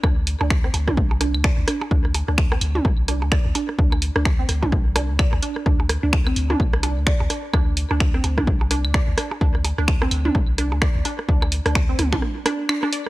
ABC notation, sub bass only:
X:1
M:4/4
L:1/16
Q:"Swing 16ths" 1/4=128
K:Cdor
V:1 name="Sub bass" clef=bass
D,,3 D,,3 D,,2 C,,3 D,,2 D,, z2 | D,,3 D,,3 D,,2 C,,3 D,,2 D,, z2 | D,,3 D,,3 D,,2 C,,3 D,,2 D,, z2 | D,,3 D,,3 D,,2 C,,3 D,,2 D,, z2 |
D,,3 D,,3 D,,2 C,,3 D,,2 D,, z2 | D,,3 D,,3 D,,2 C,,3 D,,2 D,, z2 | D,,3 D,,3 D,,2 z8 |]